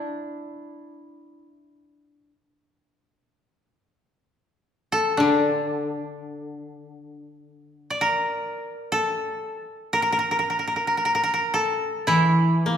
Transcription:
0.00 2.29 D4 medium
0.00 1.46 E4 medium
4.92 6.83 A4 medium
5.17 8.58 D3 medium
5.17 7.60 D4 medium
7.90 9.50 D5 medium
8.01 8.98 A#4 medium
8.92 9.99 A4 medium
9.93 10.02 A#4 medium
10.02 10.12 A#4 medium
10.12 10.18 A#4 medium
10.19 10.31 A#4 medium
10.31 10.38 A#4 medium
10.39 10.50 A#4 soft
10.50 10.59 A#4 medium
10.59 10.67 A#4 soft
10.67 10.76 A#4 soft
10.76 10.87 A#4 soft
10.87 10.97 A#4 medium
10.97 11.05 A#4 medium
11.05 11.14 A#4 medium
11.15 11.23 A#4 medium
11.24 11.33 A#4 medium
11.34 11.60 A#4 medium
11.54 12.77 A4 medium
12.07 12.77 E3 medium
12.07 12.77 E4 medium
12.66 12.77 A#3 soft

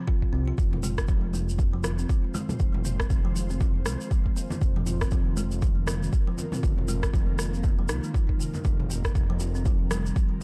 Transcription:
0.07 0.16 F4 loud
0.07 kick loud
0.22 kick medium
0.33 0.53 C2 medium
0.33 0.41 C4 medium
0.48 0.57 F4 medium
0.58 1.04 F1 loud
0.58 10.43 D#3 medium
0.58 0.72 F3 medium
0.58 4.57 G#3 medium
0.58 4.57 F4 medium
0.58 4.58 C5 medium
0.58 kick loud
0.58 shaker soft
0.73 mid tom medium
0.73 muted conga soft
0.73 high conga medium
0.83 0.91 G#3 medium
0.83 mid tom medium
0.83 shaker medium
0.98 kick medium
0.98 cross-stick medium
0.98 shaker soft
1.07 2.05 F1 medium
1.07 1.16 F3 medium
1.07 kick loud
1.07 muted conga soft
1.07 high conga medium
1.07 shaker soft
1.33 1.48 A#3 medium
1.33 muted conga medium
1.33 high conga medium
1.33 shaker medium
1.49 shaker medium
1.58 kick loud
1.58 muted conga soft
1.58 high conga medium
1.58 shaker soft
1.74 1.83 F3 medium
1.83 1.98 F4 medium
1.83 cross-stick medium
1.83 muted conga medium
1.83 low conga medium
1.83 shaker medium
1.99 2.08 C4 medium
1.99 shaker soft
2.09 2.23 F3 medium
2.09 kick loud
2.09 shaker soft
2.24 muted conga soft
2.34 2.43 G#3 loud
2.34 low conga medium
2.34 shaker medium
2.49 mid tom medium
2.49 muted conga medium
2.49 high conga loud
2.49 shaker soft
2.59 3.06 F1 loud
2.59 2.68 F3 medium
2.59 kick loud
2.59 low conga medium
2.59 shaker soft
2.74 mid tom medium
2.74 muted conga soft
2.74 high conga loud
2.85 2.99 A#3 medium
2.85 mid tom medium
2.85 shaker medium
3.00 kick medium
3.00 cross-stick medium
3.00 shaker soft
3.10 3.87 F1 medium
3.10 kick loud
3.10 muted conga soft
3.10 shaker soft
3.25 3.34 F3 medium
3.35 3.49 F4 medium
3.35 muted conga soft
3.35 high conga medium
3.35 shaker medium
3.50 3.60 C4 medium
3.50 shaker soft
3.60 3.75 F3 medium
3.60 kick loud
3.60 muted conga soft
3.60 low conga loud
3.60 shaker soft
3.76 high conga medium
3.86 3.97 C2 medium
3.86 3.94 G#3 medium
3.86 cross-stick medium
3.86 muted conga medium
3.86 shaker medium
4.01 shaker soft
4.11 4.19 F3 medium
4.11 kick loud
4.11 shaker soft
4.26 kick medium
4.26 muted conga soft
4.36 4.50 A#3 medium
4.36 shaker medium
4.50 muted conga soft
4.50 low conga loud
4.50 shaker medium
4.61 5.07 F1 loud
4.61 8.61 A#3 medium
4.61 8.61 F4 medium
4.61 8.61 A#4 medium
4.61 kick loud
4.61 shaker soft
4.76 4.86 F3 loud
4.76 mid tom medium
4.76 muted conga soft
4.76 high conga medium
4.86 5.01 F4 medium
4.86 mid tom medium
4.86 shaker medium
5.01 5.11 C4 medium
5.01 kick medium
5.01 cross-stick medium
5.01 shaker soft
5.11 6.08 F1 medium
5.11 5.26 F3 medium
5.11 kick loud
5.11 muted conga soft
5.11 high conga medium
5.11 shaker soft
5.37 5.45 G#3 loud
5.37 muted conga soft
5.37 high conga medium
5.37 shaker medium
5.51 shaker medium
5.62 5.70 F3 medium
5.62 kick loud
5.62 muted conga soft
5.62 high conga loud
5.62 shaker soft
5.87 6.01 A#3 medium
5.87 cross-stick medium
5.87 muted conga soft
5.87 low conga medium
5.87 shaker medium
6.03 shaker medium
6.13 kick loud
6.13 shaker soft
6.27 6.37 F3 medium
6.27 muted conga soft
6.38 6.52 F4 medium
6.38 low conga medium
6.38 shaker medium
6.52 6.62 C4 medium
6.52 mid tom medium
6.52 muted conga soft
6.52 high conga loud
6.52 shaker soft
6.63 7.09 F1 loud
6.63 6.77 F3 medium
6.63 kick loud
6.63 low conga medium
6.63 shaker soft
6.78 mid tom medium
6.78 muted conga soft
6.78 high conga medium
6.88 6.96 G#3 loud
6.88 mid tom medium
6.88 shaker medium
7.03 kick medium
7.03 cross-stick medium
7.03 shaker medium
7.14 7.91 F1 medium
7.14 7.22 F3 medium
7.14 kick loud
7.14 muted conga soft
7.14 shaker soft
7.38 7.53 A#3 medium
7.38 cross-stick medium
7.38 muted conga soft
7.38 high conga medium
7.38 shaker medium
7.54 shaker medium
7.63 kick loud
7.63 muted conga soft
7.63 low conga loud
7.63 shaker soft
7.79 7.88 F3 loud
7.79 high conga medium
7.88 8.00 C2 medium
7.88 7.97 D#4 medium
7.88 cross-stick medium
7.88 muted conga soft
7.88 shaker medium
8.04 8.13 G#3 medium
8.04 shaker soft
8.14 8.28 F3 medium
8.14 kick loud
8.14 shaker soft
8.29 kick medium
8.29 muted conga soft
8.40 8.53 C3 medium
8.40 shaker medium
8.54 muted conga soft
8.54 low conga loud
8.54 shaker soft
8.64 9.11 F1 medium
8.64 8.73 F3 medium
8.64 10.43 C4 medium
8.64 10.43 G4 medium
8.64 10.43 A#4 medium
8.64 kick loud
8.64 shaker soft
8.80 mid tom medium
8.80 muted conga soft
8.80 high conga medium
8.90 9.04 A#3 medium
8.90 mid tom medium
8.90 shaker medium
9.05 kick medium
9.05 cross-stick medium
9.05 shaker soft
9.15 10.12 F1 medium
9.15 kick loud
9.15 muted conga soft
9.15 high conga medium
9.15 shaker soft
9.30 9.39 F3 medium
9.40 9.54 F4 medium
9.40 muted conga soft
9.40 high conga medium
9.40 shaker medium
9.55 9.65 C4 medium
9.55 shaker soft
9.65 9.80 F3 medium
9.65 kick loud
9.65 muted conga soft
9.65 high conga loud
9.65 shaker soft
9.90 9.99 G3 medium
9.90 cross-stick medium
9.90 muted conga soft
9.90 low conga medium
9.90 shaker medium
10.06 shaker soft
10.16 10.24 F3 medium
10.16 kick loud
10.16 shaker soft
10.31 muted conga soft

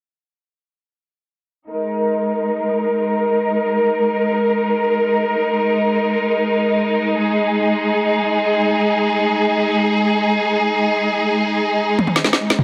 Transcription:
1.70 12.64 G#3 medium
1.70 12.64 D#4 medium
1.70 7.16 A#4 medium
7.19 12.64 G#4 medium
11.99 high tom medium
12.07 high tom medium
12.16 snare medium
12.24 snare medium
12.33 snare medium
12.50 snare medium
12.59 mid tom medium

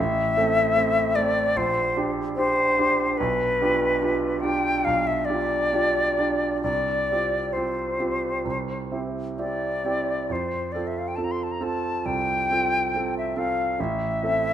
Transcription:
0.00 0.36 A1 medium
0.00 1.17 E5 medium
0.37 0.71 A3 soft
0.37 0.71 C4 soft
0.37 0.72 A4 medium
0.75 1.11 A3 soft
0.75 1.11 C4 soft
0.75 1.11 A4 medium
1.15 1.53 A3 soft
1.15 1.53 C4 medium
1.15 1.53 A4 medium
1.15 1.59 D5 medium
1.56 1.95 A#1 medium
1.56 2.11 C5 medium
1.97 2.33 D4 medium
1.97 2.33 G4 medium
2.36 2.73 D4 soft
2.36 2.74 G4 medium
2.36 3.19 C5 loud
2.79 3.15 D4 medium
2.79 3.15 G4 medium
3.17 3.59 B1 medium
3.17 4.42 B4 medium
3.62 3.97 D4 medium
3.62 3.97 F4 medium
3.62 3.97 G4 medium
4.02 4.38 D4 soft
4.02 4.38 F4 soft
4.02 4.39 G4 soft
4.40 4.80 D4 medium
4.40 4.81 G4 medium
4.40 4.86 G5 medium
4.44 4.81 F4 medium
4.85 5.27 B1 medium
4.85 5.08 F5 medium
5.07 5.27 E5 medium
5.25 6.61 D5 medium
5.29 5.68 D4 soft
5.29 5.68 F4 soft
5.29 5.68 G4 soft
5.73 6.13 D4 soft
5.73 6.13 F4 soft
5.73 6.13 G4 medium
6.18 6.59 D4 soft
6.18 6.59 F4 medium
6.18 6.60 G4 soft
6.62 7.07 C2 medium
6.62 7.54 D5 medium
7.12 7.51 C4 soft
7.12 7.51 F4 soft
7.12 7.51 G4 soft
7.53 7.96 C4 soft
7.53 7.96 F4 soft
7.53 7.96 G4 soft
7.53 9.08 C5 medium
8.00 8.41 C4 soft
8.00 8.41 F4 soft
8.00 8.41 G4 soft
8.45 8.90 C2 soft
8.92 9.34 C4 soft
8.92 9.34 E4 soft
8.92 9.35 G4 soft
9.38 9.81 C4 soft
9.38 9.81 E4 soft
9.38 9.81 G4 soft
9.38 10.34 D5 medium
9.85 10.26 C4 soft
9.85 10.26 E4 soft
9.85 10.26 G4 soft
10.30 10.72 F2 soft
10.30 10.74 C5 medium
10.72 11.13 C4 soft
10.72 11.13 F4 soft
10.72 11.13 A4 soft
10.72 10.89 D5 medium
10.87 11.00 E5 medium
10.98 11.09 F5 soft
11.08 11.17 G5 medium
11.16 11.57 C4 soft
11.16 11.57 F4 soft
11.16 11.57 A4 soft
11.16 11.26 A5 medium
11.24 11.33 A#5 medium
11.31 11.45 C6 medium
11.43 11.53 A5 soft
11.51 11.65 A#5 medium
11.60 12.01 C4 soft
11.60 12.01 F4 soft
11.60 12.02 A4 soft
11.60 12.07 A5 medium
12.05 12.48 C2 soft
12.05 13.15 G5 medium
12.50 12.89 C4 soft
12.50 12.90 F4 soft
12.50 12.90 A4 soft
12.95 13.32 C4 soft
12.95 13.33 F4 soft
12.95 13.33 A4 soft
13.18 13.40 E5 medium
13.36 13.75 C4 soft
13.36 13.75 F4 soft
13.36 13.75 A4 medium
13.36 13.82 F5 medium
13.80 14.21 A1 medium
13.80 14.54 E5 medium
14.23 14.54 C4 soft
14.23 14.54 E4 soft
14.23 14.54 A4 soft

